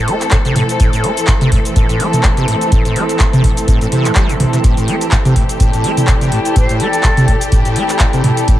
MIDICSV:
0, 0, Header, 1, 6, 480
1, 0, Start_track
1, 0, Key_signature, 0, "minor"
1, 0, Tempo, 480000
1, 800, Time_signature, 4, 2, 24, 8
1, 8596, End_track
2, 0, Start_track
2, 0, Title_t, "Ambient pad"
2, 0, Program_c, 0, 92
2, 0, Note_on_c, 0, 64, 79
2, 0, Note_on_c, 0, 69, 84
2, 0, Note_on_c, 0, 72, 76
2, 0, Note_on_c, 0, 81, 87
2, 4960, Note_on_c, 0, 74, 77
2, 5100, Note_off_c, 0, 72, 0
2, 8596, Note_off_c, 0, 64, 0
2, 8596, Note_off_c, 0, 69, 0
2, 8596, Note_off_c, 0, 74, 0
2, 8596, Note_off_c, 0, 81, 0
2, 8596, End_track
3, 0, Start_track
3, 0, Title_t, "Flute"
3, 0, Program_c, 1, 73
3, 6562, Note_on_c, 1, 72, 91
3, 6795, Note_off_c, 1, 72, 0
3, 6801, Note_on_c, 1, 69, 93
3, 7478, Note_off_c, 1, 69, 0
3, 8596, End_track
4, 0, Start_track
4, 0, Title_t, "String section"
4, 0, Program_c, 2, 48
4, 0, Note_on_c, 2, 52, 84
4, 0, Note_on_c, 2, 57, 75
4, 0, Note_on_c, 2, 60, 77
4, 0, Note_on_c, 2, 69, 96
4, 4600, Note_off_c, 2, 69, 0
4, 4641, Note_on_c, 2, 67, 97
4, 8596, Note_off_c, 2, 52, 0
4, 8596, Note_off_c, 2, 57, 0
4, 8596, Note_off_c, 2, 60, 0
4, 8596, Note_off_c, 2, 67, 0
4, 8596, End_track
5, 0, Start_track
5, 0, Title_t, "Acid bass"
5, 0, Program_c, 3, 38
5, 79, Note_on_c, 3, 57, 81
5, 153, Note_off_c, 3, 57, 0
5, 319, Note_on_c, 3, 45, 102
5, 363, Note_off_c, 3, 45, 0
5, 452, Note_on_c, 3, 48, 104
5, 541, Note_off_c, 3, 48, 0
5, 560, Note_on_c, 3, 45, 76
5, 633, Note_off_c, 3, 45, 0
5, 799, Note_on_c, 3, 45, 87
5, 909, Note_off_c, 3, 45, 0
5, 932, Note_on_c, 3, 45, 80
5, 1038, Note_on_c, 3, 57, 77
5, 1053, Note_off_c, 3, 45, 0
5, 1112, Note_off_c, 3, 57, 0
5, 1279, Note_on_c, 3, 45, 104
5, 1323, Note_off_c, 3, 45, 0
5, 1411, Note_on_c, 3, 48, 101
5, 1500, Note_off_c, 3, 48, 0
5, 1520, Note_on_c, 3, 45, 73
5, 1593, Note_off_c, 3, 45, 0
5, 1761, Note_on_c, 3, 45, 84
5, 1870, Note_off_c, 3, 45, 0
5, 1892, Note_on_c, 3, 45, 79
5, 2000, Note_on_c, 3, 57, 78
5, 2015, Note_off_c, 3, 45, 0
5, 2073, Note_off_c, 3, 57, 0
5, 2239, Note_on_c, 3, 45, 102
5, 2283, Note_off_c, 3, 45, 0
5, 2372, Note_on_c, 3, 48, 103
5, 2460, Note_off_c, 3, 48, 0
5, 2481, Note_on_c, 3, 45, 76
5, 2554, Note_off_c, 3, 45, 0
5, 2720, Note_on_c, 3, 45, 85
5, 2830, Note_off_c, 3, 45, 0
5, 2853, Note_on_c, 3, 45, 79
5, 2960, Note_on_c, 3, 57, 76
5, 2975, Note_off_c, 3, 45, 0
5, 3033, Note_off_c, 3, 57, 0
5, 3200, Note_on_c, 3, 45, 107
5, 3244, Note_off_c, 3, 45, 0
5, 3334, Note_on_c, 3, 48, 105
5, 3422, Note_off_c, 3, 48, 0
5, 3440, Note_on_c, 3, 45, 78
5, 3513, Note_off_c, 3, 45, 0
5, 3681, Note_on_c, 3, 45, 86
5, 3790, Note_off_c, 3, 45, 0
5, 3814, Note_on_c, 3, 45, 76
5, 3872, Note_off_c, 3, 45, 0
5, 3922, Note_on_c, 3, 48, 102
5, 4055, Note_on_c, 3, 45, 77
5, 4070, Note_off_c, 3, 48, 0
5, 4113, Note_off_c, 3, 45, 0
5, 4161, Note_on_c, 3, 55, 87
5, 4295, Note_on_c, 3, 45, 81
5, 4310, Note_off_c, 3, 55, 0
5, 4353, Note_off_c, 3, 45, 0
5, 4401, Note_on_c, 3, 33, 78
5, 4444, Note_off_c, 3, 33, 0
5, 4533, Note_on_c, 3, 48, 77
5, 4592, Note_off_c, 3, 48, 0
5, 4642, Note_on_c, 3, 45, 83
5, 4750, Note_off_c, 3, 45, 0
5, 4774, Note_on_c, 3, 45, 80
5, 4881, Note_on_c, 3, 57, 76
5, 4896, Note_off_c, 3, 45, 0
5, 4954, Note_off_c, 3, 57, 0
5, 5121, Note_on_c, 3, 45, 111
5, 5164, Note_off_c, 3, 45, 0
5, 5254, Note_on_c, 3, 48, 100
5, 5342, Note_off_c, 3, 48, 0
5, 5361, Note_on_c, 3, 45, 77
5, 5434, Note_off_c, 3, 45, 0
5, 5601, Note_on_c, 3, 45, 86
5, 5710, Note_off_c, 3, 45, 0
5, 5735, Note_on_c, 3, 45, 74
5, 5842, Note_on_c, 3, 57, 79
5, 5857, Note_off_c, 3, 45, 0
5, 5914, Note_off_c, 3, 57, 0
5, 6081, Note_on_c, 3, 45, 101
5, 6124, Note_off_c, 3, 45, 0
5, 6213, Note_on_c, 3, 48, 104
5, 6301, Note_off_c, 3, 48, 0
5, 6321, Note_on_c, 3, 45, 79
5, 6394, Note_off_c, 3, 45, 0
5, 6561, Note_on_c, 3, 45, 83
5, 6670, Note_off_c, 3, 45, 0
5, 6694, Note_on_c, 3, 45, 80
5, 6802, Note_on_c, 3, 57, 77
5, 6817, Note_off_c, 3, 45, 0
5, 6874, Note_off_c, 3, 57, 0
5, 7041, Note_on_c, 3, 45, 106
5, 7084, Note_off_c, 3, 45, 0
5, 7174, Note_on_c, 3, 48, 107
5, 7262, Note_off_c, 3, 48, 0
5, 7282, Note_on_c, 3, 45, 76
5, 7354, Note_off_c, 3, 45, 0
5, 7521, Note_on_c, 3, 45, 86
5, 7630, Note_off_c, 3, 45, 0
5, 7654, Note_on_c, 3, 45, 74
5, 7759, Note_on_c, 3, 57, 77
5, 7774, Note_off_c, 3, 45, 0
5, 7833, Note_off_c, 3, 57, 0
5, 8001, Note_on_c, 3, 45, 102
5, 8044, Note_off_c, 3, 45, 0
5, 8132, Note_on_c, 3, 48, 104
5, 8221, Note_off_c, 3, 48, 0
5, 8240, Note_on_c, 3, 45, 78
5, 8313, Note_off_c, 3, 45, 0
5, 8480, Note_on_c, 3, 45, 87
5, 8590, Note_off_c, 3, 45, 0
5, 8596, End_track
6, 0, Start_track
6, 0, Title_t, "Drums"
6, 78, Note_on_c, 9, 46, 109
6, 178, Note_off_c, 9, 46, 0
6, 205, Note_on_c, 9, 39, 38
6, 211, Note_on_c, 9, 42, 52
6, 215, Note_on_c, 9, 82, 65
6, 305, Note_off_c, 9, 39, 0
6, 311, Note_off_c, 9, 42, 0
6, 311, Note_on_c, 9, 39, 127
6, 315, Note_off_c, 9, 82, 0
6, 316, Note_on_c, 9, 42, 88
6, 320, Note_on_c, 9, 36, 127
6, 321, Note_on_c, 9, 82, 55
6, 411, Note_off_c, 9, 39, 0
6, 416, Note_off_c, 9, 42, 0
6, 420, Note_off_c, 9, 36, 0
6, 421, Note_off_c, 9, 82, 0
6, 450, Note_on_c, 9, 42, 39
6, 455, Note_on_c, 9, 82, 33
6, 550, Note_off_c, 9, 42, 0
6, 555, Note_off_c, 9, 82, 0
6, 557, Note_on_c, 9, 45, 85
6, 557, Note_on_c, 9, 46, 113
6, 657, Note_off_c, 9, 45, 0
6, 657, Note_off_c, 9, 46, 0
6, 691, Note_on_c, 9, 42, 52
6, 696, Note_on_c, 9, 82, 63
6, 791, Note_off_c, 9, 42, 0
6, 796, Note_off_c, 9, 82, 0
6, 798, Note_on_c, 9, 42, 74
6, 800, Note_on_c, 9, 36, 124
6, 802, Note_on_c, 9, 82, 56
6, 898, Note_off_c, 9, 42, 0
6, 900, Note_off_c, 9, 36, 0
6, 902, Note_off_c, 9, 82, 0
6, 931, Note_on_c, 9, 42, 37
6, 935, Note_on_c, 9, 82, 33
6, 1031, Note_off_c, 9, 42, 0
6, 1035, Note_off_c, 9, 82, 0
6, 1038, Note_on_c, 9, 46, 113
6, 1138, Note_off_c, 9, 46, 0
6, 1172, Note_on_c, 9, 42, 52
6, 1176, Note_on_c, 9, 82, 68
6, 1272, Note_off_c, 9, 42, 0
6, 1272, Note_on_c, 9, 39, 127
6, 1276, Note_off_c, 9, 82, 0
6, 1278, Note_on_c, 9, 42, 78
6, 1280, Note_on_c, 9, 36, 126
6, 1282, Note_on_c, 9, 82, 54
6, 1372, Note_off_c, 9, 39, 0
6, 1378, Note_off_c, 9, 42, 0
6, 1380, Note_off_c, 9, 36, 0
6, 1382, Note_off_c, 9, 82, 0
6, 1412, Note_on_c, 9, 42, 35
6, 1412, Note_on_c, 9, 45, 85
6, 1416, Note_on_c, 9, 82, 33
6, 1512, Note_off_c, 9, 42, 0
6, 1512, Note_off_c, 9, 45, 0
6, 1516, Note_off_c, 9, 82, 0
6, 1519, Note_on_c, 9, 46, 114
6, 1520, Note_on_c, 9, 36, 92
6, 1619, Note_off_c, 9, 46, 0
6, 1620, Note_off_c, 9, 36, 0
6, 1652, Note_on_c, 9, 42, 55
6, 1657, Note_on_c, 9, 82, 66
6, 1752, Note_off_c, 9, 42, 0
6, 1757, Note_off_c, 9, 82, 0
6, 1760, Note_on_c, 9, 36, 127
6, 1760, Note_on_c, 9, 42, 80
6, 1764, Note_on_c, 9, 82, 54
6, 1860, Note_off_c, 9, 36, 0
6, 1860, Note_off_c, 9, 42, 0
6, 1864, Note_off_c, 9, 82, 0
6, 1893, Note_on_c, 9, 42, 38
6, 1897, Note_on_c, 9, 82, 34
6, 1993, Note_off_c, 9, 42, 0
6, 1997, Note_off_c, 9, 82, 0
6, 1999, Note_on_c, 9, 46, 110
6, 2099, Note_off_c, 9, 46, 0
6, 2133, Note_on_c, 9, 42, 49
6, 2133, Note_on_c, 9, 45, 84
6, 2137, Note_on_c, 9, 82, 66
6, 2233, Note_off_c, 9, 42, 0
6, 2233, Note_off_c, 9, 45, 0
6, 2234, Note_on_c, 9, 39, 127
6, 2237, Note_off_c, 9, 82, 0
6, 2240, Note_on_c, 9, 36, 127
6, 2240, Note_on_c, 9, 42, 82
6, 2244, Note_on_c, 9, 82, 54
6, 2334, Note_off_c, 9, 39, 0
6, 2340, Note_off_c, 9, 36, 0
6, 2340, Note_off_c, 9, 42, 0
6, 2344, Note_off_c, 9, 82, 0
6, 2372, Note_on_c, 9, 42, 36
6, 2377, Note_on_c, 9, 82, 34
6, 2472, Note_off_c, 9, 42, 0
6, 2477, Note_off_c, 9, 82, 0
6, 2480, Note_on_c, 9, 46, 113
6, 2580, Note_off_c, 9, 46, 0
6, 2613, Note_on_c, 9, 42, 51
6, 2618, Note_on_c, 9, 82, 65
6, 2713, Note_off_c, 9, 42, 0
6, 2718, Note_off_c, 9, 82, 0
6, 2719, Note_on_c, 9, 42, 79
6, 2720, Note_on_c, 9, 36, 127
6, 2724, Note_on_c, 9, 82, 54
6, 2819, Note_off_c, 9, 42, 0
6, 2820, Note_off_c, 9, 36, 0
6, 2824, Note_off_c, 9, 82, 0
6, 2853, Note_on_c, 9, 42, 37
6, 2857, Note_on_c, 9, 82, 34
6, 2953, Note_off_c, 9, 42, 0
6, 2957, Note_off_c, 9, 82, 0
6, 2960, Note_on_c, 9, 46, 102
6, 3060, Note_off_c, 9, 46, 0
6, 3093, Note_on_c, 9, 42, 50
6, 3098, Note_on_c, 9, 82, 68
6, 3193, Note_off_c, 9, 42, 0
6, 3194, Note_on_c, 9, 39, 120
6, 3198, Note_off_c, 9, 82, 0
6, 3200, Note_on_c, 9, 36, 124
6, 3200, Note_on_c, 9, 42, 79
6, 3204, Note_on_c, 9, 82, 55
6, 3294, Note_off_c, 9, 39, 0
6, 3300, Note_off_c, 9, 36, 0
6, 3300, Note_off_c, 9, 42, 0
6, 3304, Note_off_c, 9, 82, 0
6, 3334, Note_on_c, 9, 42, 34
6, 3334, Note_on_c, 9, 45, 87
6, 3338, Note_on_c, 9, 82, 34
6, 3434, Note_off_c, 9, 42, 0
6, 3434, Note_off_c, 9, 45, 0
6, 3438, Note_off_c, 9, 82, 0
6, 3440, Note_on_c, 9, 36, 86
6, 3440, Note_on_c, 9, 46, 115
6, 3540, Note_off_c, 9, 36, 0
6, 3540, Note_off_c, 9, 46, 0
6, 3573, Note_on_c, 9, 42, 55
6, 3577, Note_on_c, 9, 82, 68
6, 3673, Note_off_c, 9, 42, 0
6, 3677, Note_off_c, 9, 82, 0
6, 3680, Note_on_c, 9, 36, 127
6, 3680, Note_on_c, 9, 42, 79
6, 3684, Note_on_c, 9, 82, 53
6, 3780, Note_off_c, 9, 36, 0
6, 3780, Note_off_c, 9, 42, 0
6, 3784, Note_off_c, 9, 82, 0
6, 3813, Note_on_c, 9, 42, 36
6, 3817, Note_on_c, 9, 82, 34
6, 3913, Note_off_c, 9, 42, 0
6, 3917, Note_off_c, 9, 82, 0
6, 3920, Note_on_c, 9, 46, 112
6, 4020, Note_off_c, 9, 46, 0
6, 4048, Note_on_c, 9, 39, 37
6, 4053, Note_on_c, 9, 42, 50
6, 4058, Note_on_c, 9, 82, 64
6, 4148, Note_off_c, 9, 39, 0
6, 4153, Note_off_c, 9, 42, 0
6, 4154, Note_on_c, 9, 39, 126
6, 4158, Note_off_c, 9, 82, 0
6, 4159, Note_on_c, 9, 42, 76
6, 4160, Note_on_c, 9, 36, 127
6, 4164, Note_on_c, 9, 82, 55
6, 4254, Note_off_c, 9, 39, 0
6, 4259, Note_off_c, 9, 42, 0
6, 4260, Note_off_c, 9, 36, 0
6, 4264, Note_off_c, 9, 82, 0
6, 4293, Note_on_c, 9, 42, 35
6, 4298, Note_on_c, 9, 82, 35
6, 4393, Note_off_c, 9, 42, 0
6, 4398, Note_off_c, 9, 82, 0
6, 4400, Note_on_c, 9, 45, 96
6, 4400, Note_on_c, 9, 46, 114
6, 4500, Note_off_c, 9, 45, 0
6, 4500, Note_off_c, 9, 46, 0
6, 4533, Note_on_c, 9, 42, 51
6, 4537, Note_on_c, 9, 82, 65
6, 4633, Note_off_c, 9, 42, 0
6, 4637, Note_off_c, 9, 82, 0
6, 4640, Note_on_c, 9, 36, 127
6, 4641, Note_on_c, 9, 42, 78
6, 4645, Note_on_c, 9, 82, 57
6, 4740, Note_off_c, 9, 36, 0
6, 4741, Note_off_c, 9, 42, 0
6, 4745, Note_off_c, 9, 82, 0
6, 4773, Note_on_c, 9, 42, 35
6, 4777, Note_on_c, 9, 82, 36
6, 4873, Note_off_c, 9, 42, 0
6, 4877, Note_off_c, 9, 82, 0
6, 4879, Note_on_c, 9, 46, 100
6, 4979, Note_off_c, 9, 46, 0
6, 5013, Note_on_c, 9, 42, 54
6, 5017, Note_on_c, 9, 82, 72
6, 5113, Note_off_c, 9, 42, 0
6, 5114, Note_on_c, 9, 39, 115
6, 5117, Note_off_c, 9, 82, 0
6, 5120, Note_on_c, 9, 36, 115
6, 5120, Note_on_c, 9, 42, 79
6, 5124, Note_on_c, 9, 82, 58
6, 5214, Note_off_c, 9, 39, 0
6, 5220, Note_off_c, 9, 36, 0
6, 5220, Note_off_c, 9, 42, 0
6, 5224, Note_off_c, 9, 82, 0
6, 5253, Note_on_c, 9, 42, 35
6, 5253, Note_on_c, 9, 45, 89
6, 5258, Note_on_c, 9, 82, 34
6, 5353, Note_off_c, 9, 42, 0
6, 5353, Note_off_c, 9, 45, 0
6, 5358, Note_off_c, 9, 82, 0
6, 5360, Note_on_c, 9, 36, 81
6, 5360, Note_on_c, 9, 46, 111
6, 5460, Note_off_c, 9, 36, 0
6, 5460, Note_off_c, 9, 46, 0
6, 5493, Note_on_c, 9, 42, 53
6, 5497, Note_on_c, 9, 82, 72
6, 5593, Note_off_c, 9, 42, 0
6, 5597, Note_off_c, 9, 82, 0
6, 5600, Note_on_c, 9, 36, 124
6, 5600, Note_on_c, 9, 42, 76
6, 5605, Note_on_c, 9, 82, 60
6, 5700, Note_off_c, 9, 36, 0
6, 5700, Note_off_c, 9, 42, 0
6, 5705, Note_off_c, 9, 82, 0
6, 5734, Note_on_c, 9, 42, 39
6, 5738, Note_on_c, 9, 82, 34
6, 5834, Note_off_c, 9, 42, 0
6, 5838, Note_off_c, 9, 82, 0
6, 5840, Note_on_c, 9, 46, 111
6, 5940, Note_off_c, 9, 46, 0
6, 5973, Note_on_c, 9, 42, 50
6, 5973, Note_on_c, 9, 45, 93
6, 5978, Note_on_c, 9, 82, 67
6, 6073, Note_off_c, 9, 42, 0
6, 6073, Note_off_c, 9, 45, 0
6, 6074, Note_on_c, 9, 39, 117
6, 6078, Note_off_c, 9, 82, 0
6, 6080, Note_on_c, 9, 36, 126
6, 6080, Note_on_c, 9, 42, 80
6, 6084, Note_on_c, 9, 82, 60
6, 6174, Note_off_c, 9, 39, 0
6, 6180, Note_off_c, 9, 36, 0
6, 6180, Note_off_c, 9, 42, 0
6, 6184, Note_off_c, 9, 82, 0
6, 6213, Note_on_c, 9, 42, 35
6, 6218, Note_on_c, 9, 82, 34
6, 6313, Note_off_c, 9, 42, 0
6, 6318, Note_off_c, 9, 82, 0
6, 6319, Note_on_c, 9, 46, 108
6, 6419, Note_off_c, 9, 46, 0
6, 6452, Note_on_c, 9, 42, 50
6, 6456, Note_on_c, 9, 82, 69
6, 6552, Note_off_c, 9, 42, 0
6, 6556, Note_off_c, 9, 82, 0
6, 6559, Note_on_c, 9, 42, 76
6, 6560, Note_on_c, 9, 36, 119
6, 6563, Note_on_c, 9, 82, 58
6, 6659, Note_off_c, 9, 42, 0
6, 6660, Note_off_c, 9, 36, 0
6, 6663, Note_off_c, 9, 82, 0
6, 6692, Note_on_c, 9, 42, 38
6, 6696, Note_on_c, 9, 82, 36
6, 6792, Note_off_c, 9, 42, 0
6, 6796, Note_off_c, 9, 82, 0
6, 6798, Note_on_c, 9, 46, 105
6, 6898, Note_off_c, 9, 46, 0
6, 6931, Note_on_c, 9, 42, 53
6, 6936, Note_on_c, 9, 82, 76
6, 7031, Note_off_c, 9, 42, 0
6, 7034, Note_on_c, 9, 39, 117
6, 7036, Note_off_c, 9, 82, 0
6, 7039, Note_on_c, 9, 42, 78
6, 7040, Note_on_c, 9, 36, 114
6, 7044, Note_on_c, 9, 82, 59
6, 7134, Note_off_c, 9, 39, 0
6, 7139, Note_off_c, 9, 42, 0
6, 7140, Note_off_c, 9, 36, 0
6, 7144, Note_off_c, 9, 82, 0
6, 7172, Note_on_c, 9, 42, 37
6, 7172, Note_on_c, 9, 45, 92
6, 7176, Note_on_c, 9, 82, 34
6, 7272, Note_off_c, 9, 42, 0
6, 7272, Note_off_c, 9, 45, 0
6, 7276, Note_off_c, 9, 82, 0
6, 7279, Note_on_c, 9, 46, 106
6, 7280, Note_on_c, 9, 36, 83
6, 7379, Note_off_c, 9, 46, 0
6, 7380, Note_off_c, 9, 36, 0
6, 7412, Note_on_c, 9, 42, 57
6, 7417, Note_on_c, 9, 82, 73
6, 7512, Note_off_c, 9, 42, 0
6, 7517, Note_off_c, 9, 82, 0
6, 7520, Note_on_c, 9, 36, 122
6, 7520, Note_on_c, 9, 42, 76
6, 7524, Note_on_c, 9, 82, 61
6, 7619, Note_off_c, 9, 42, 0
6, 7620, Note_off_c, 9, 36, 0
6, 7624, Note_off_c, 9, 82, 0
6, 7652, Note_on_c, 9, 42, 39
6, 7656, Note_on_c, 9, 82, 38
6, 7752, Note_off_c, 9, 42, 0
6, 7756, Note_off_c, 9, 82, 0
6, 7758, Note_on_c, 9, 46, 106
6, 7858, Note_off_c, 9, 46, 0
6, 7886, Note_on_c, 9, 39, 35
6, 7892, Note_on_c, 9, 42, 51
6, 7896, Note_on_c, 9, 82, 70
6, 7986, Note_off_c, 9, 39, 0
6, 7992, Note_off_c, 9, 42, 0
6, 7992, Note_on_c, 9, 39, 123
6, 7996, Note_off_c, 9, 82, 0
6, 7998, Note_on_c, 9, 42, 80
6, 8000, Note_on_c, 9, 36, 125
6, 8002, Note_on_c, 9, 82, 63
6, 8092, Note_off_c, 9, 39, 0
6, 8098, Note_off_c, 9, 42, 0
6, 8100, Note_off_c, 9, 36, 0
6, 8102, Note_off_c, 9, 82, 0
6, 8132, Note_on_c, 9, 42, 37
6, 8136, Note_on_c, 9, 82, 34
6, 8232, Note_off_c, 9, 42, 0
6, 8236, Note_off_c, 9, 82, 0
6, 8239, Note_on_c, 9, 45, 104
6, 8239, Note_on_c, 9, 46, 106
6, 8339, Note_off_c, 9, 45, 0
6, 8339, Note_off_c, 9, 46, 0
6, 8373, Note_on_c, 9, 42, 51
6, 8377, Note_on_c, 9, 82, 67
6, 8473, Note_off_c, 9, 42, 0
6, 8477, Note_off_c, 9, 82, 0
6, 8479, Note_on_c, 9, 42, 82
6, 8480, Note_on_c, 9, 36, 114
6, 8483, Note_on_c, 9, 82, 61
6, 8579, Note_off_c, 9, 42, 0
6, 8580, Note_off_c, 9, 36, 0
6, 8583, Note_off_c, 9, 82, 0
6, 8596, End_track
0, 0, End_of_file